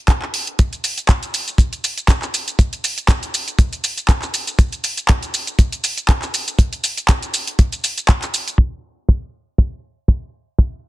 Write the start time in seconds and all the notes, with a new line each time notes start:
0.08 kick, clap, closed hi-hat
0.22 clap
0.34 open hi-hat
0.47 closed hi-hat
0.59 kick, closed hi-hat, shaker
0.73 closed hi-hat, shaker
0.84 open hi-hat, shaker
0.98 closed hi-hat, shaker
1.09 kick, clap, closed hi-hat, shaker
1.23 closed hi-hat, shaker
1.34 open hi-hat, shaker
1.48 closed hi-hat, shaker
1.58 kick, closed hi-hat, shaker
1.73 closed hi-hat, shaker
1.84 open hi-hat, shaker
1.98 closed hi-hat, shaker
2.08 kick, clap, closed hi-hat, shaker
2.22 clap, shaker
2.34 open hi-hat, shaker
2.48 closed hi-hat, shaker
2.59 kick, closed hi-hat, shaker
2.73 closed hi-hat, shaker
2.84 open hi-hat, shaker
2.98 closed hi-hat, shaker
3.08 kick, clap, closed hi-hat, shaker
3.23 closed hi-hat, shaker
3.34 open hi-hat, shaker
3.48 closed hi-hat, shaker
3.59 kick, closed hi-hat, shaker
3.73 closed hi-hat, shaker
3.84 open hi-hat, shaker
3.98 closed hi-hat, shaker
4.08 kick, clap, closed hi-hat, shaker
4.22 clap, shaker
4.34 open hi-hat, shaker
4.47 closed hi-hat, shaker
4.59 kick, closed hi-hat, shaker
4.72 closed hi-hat, shaker
4.84 open hi-hat, shaker
4.97 closed hi-hat, shaker
5.09 kick, clap, closed hi-hat, shaker
5.23 closed hi-hat, shaker
5.34 open hi-hat, shaker
5.47 closed hi-hat, shaker
5.59 kick, closed hi-hat, shaker
5.72 closed hi-hat, shaker
5.84 open hi-hat, shaker
5.98 closed hi-hat, shaker
6.08 kick, clap, closed hi-hat, shaker
6.22 clap, shaker
6.34 open hi-hat, shaker
6.48 closed hi-hat, shaker
6.59 kick, closed hi-hat, shaker
6.73 closed hi-hat, shaker
6.84 open hi-hat, shaker
6.97 closed hi-hat, shaker
7.08 kick, clap, closed hi-hat, shaker
7.22 closed hi-hat, shaker
7.34 open hi-hat, shaker
7.47 closed hi-hat, shaker
7.59 kick, closed hi-hat, shaker
7.72 closed hi-hat, shaker
7.84 open hi-hat, shaker
7.98 closed hi-hat, shaker
8.08 kick, clap, closed hi-hat, shaker
8.22 clap, closed hi-hat, shaker
8.34 open hi-hat, shaker
8.48 closed hi-hat, shaker
8.58 kick
9.09 kick
9.58 kick
10.08 kick
10.59 kick